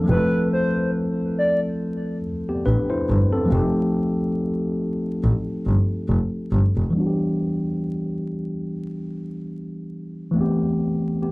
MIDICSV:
0, 0, Header, 1, 4, 480
1, 0, Start_track
1, 0, Key_signature, 1, "minor"
1, 0, Tempo, 857143
1, 47, Time_signature, 4, 2, 24, 8
1, 6337, End_track
2, 0, Start_track
2, 0, Title_t, "Soft synth lead"
2, 0, Program_c, 0, 80
2, 56, Note_on_c, 0, 71, 111
2, 269, Note_off_c, 0, 71, 0
2, 297, Note_on_c, 0, 72, 89
2, 510, Note_off_c, 0, 72, 0
2, 775, Note_on_c, 0, 74, 75
2, 898, Note_off_c, 0, 74, 0
2, 6337, End_track
3, 0, Start_track
3, 0, Title_t, "Tine electric piano"
3, 0, Program_c, 1, 4
3, 0, Control_c, 1, 64, 127
3, 0, Note_on_c, 1, 58, 49
3, 0, Note_on_c, 1, 60, 53
3, 0, Note_on_c, 1, 69, 63
3, 21, Note_on_c, 1, 53, 65
3, 34, Note_on_c, 1, 57, 61
3, 47, Note_off_c, 1, 60, 0
3, 47, Note_on_c, 1, 60, 54
3, 54, Control_c, 1, 64, 0
3, 58, Note_off_c, 1, 69, 0
3, 59, Note_off_c, 1, 58, 0
3, 61, Note_on_c, 1, 64, 50
3, 75, Note_on_c, 1, 69, 65
3, 146, Control_c, 1, 64, 127
3, 1225, Note_off_c, 1, 60, 0
3, 1232, Note_off_c, 1, 64, 0
3, 1239, Note_off_c, 1, 69, 0
3, 1394, Note_on_c, 1, 67, 55
3, 1398, Note_on_c, 1, 59, 53
3, 1486, Note_off_c, 1, 67, 0
3, 1487, Note_on_c, 1, 71, 79
3, 1488, Note_off_c, 1, 59, 0
3, 1491, Note_on_c, 1, 62, 57
3, 1620, Note_off_c, 1, 71, 0
3, 1622, Note_off_c, 1, 62, 0
3, 1622, Note_on_c, 1, 72, 74
3, 1625, Note_on_c, 1, 64, 54
3, 1853, Note_off_c, 1, 72, 0
3, 1854, Note_off_c, 1, 64, 0
3, 1863, Note_on_c, 1, 69, 66
3, 1866, Note_on_c, 1, 60, 52
3, 1927, Note_off_c, 1, 53, 0
3, 1933, Note_on_c, 1, 53, 61
3, 1938, Note_off_c, 1, 57, 0
3, 1947, Note_on_c, 1, 57, 61
3, 1954, Note_off_c, 1, 60, 0
3, 1960, Note_on_c, 1, 60, 54
3, 1974, Control_c, 1, 64, 0
3, 1974, Note_on_c, 1, 63, 55
3, 1987, Note_on_c, 1, 67, 70
3, 2076, Control_c, 1, 64, 127
3, 2093, Note_off_c, 1, 69, 0
3, 3848, Note_off_c, 1, 53, 0
3, 3855, Note_off_c, 1, 57, 0
3, 3861, Note_off_c, 1, 60, 0
3, 3866, Note_on_c, 1, 52, 61
3, 3868, Note_off_c, 1, 63, 0
3, 3875, Note_off_c, 1, 67, 0
3, 3880, Note_on_c, 1, 55, 55
3, 3893, Control_c, 1, 64, 0
3, 3893, Note_on_c, 1, 59, 56
3, 3906, Note_on_c, 1, 62, 60
3, 3920, Note_on_c, 1, 66, 57
3, 3946, Note_off_c, 1, 66, 0
3, 3956, Note_on_c, 1, 67, 63
3, 3998, Control_c, 1, 64, 127
3, 5768, Note_off_c, 1, 52, 0
3, 5775, Note_on_c, 1, 52, 67
3, 5781, Note_off_c, 1, 55, 0
3, 5788, Note_off_c, 1, 59, 0
3, 5789, Note_on_c, 1, 57, 62
3, 5794, Note_off_c, 1, 62, 0
3, 5802, Note_on_c, 1, 59, 62
3, 5814, Control_c, 1, 64, 0
3, 5815, Note_on_c, 1, 60, 51
3, 5819, Note_off_c, 1, 67, 0
3, 5829, Note_on_c, 1, 67, 68
3, 5922, Control_c, 1, 64, 127
3, 6275, Note_off_c, 1, 59, 0
3, 6279, Note_off_c, 1, 67, 0
3, 6282, Note_off_c, 1, 60, 0
3, 6286, Note_on_c, 1, 67, 47
3, 6289, Note_on_c, 1, 59, 45
3, 6337, Note_off_c, 1, 52, 0
3, 6337, Note_off_c, 1, 57, 0
3, 6337, Note_off_c, 1, 59, 0
3, 6337, Note_off_c, 1, 67, 0
3, 6337, End_track
4, 0, Start_track
4, 0, Title_t, "Double bass"
4, 0, Program_c, 2, 43
4, 54, Note_on_c, 2, 29, 113
4, 99, Note_off_c, 2, 29, 0
4, 1495, Note_on_c, 2, 33, 89
4, 1540, Note_off_c, 2, 33, 0
4, 1736, Note_on_c, 2, 31, 90
4, 1780, Note_off_c, 2, 31, 0
4, 1976, Note_on_c, 2, 29, 109
4, 2020, Note_off_c, 2, 29, 0
4, 2936, Note_on_c, 2, 33, 90
4, 2981, Note_off_c, 2, 33, 0
4, 3175, Note_on_c, 2, 31, 91
4, 3220, Note_off_c, 2, 31, 0
4, 3414, Note_on_c, 2, 29, 94
4, 3459, Note_off_c, 2, 29, 0
4, 3654, Note_on_c, 2, 31, 91
4, 3698, Note_off_c, 2, 31, 0
4, 3794, Note_on_c, 2, 29, 76
4, 3839, Note_off_c, 2, 29, 0
4, 6337, End_track
0, 0, End_of_file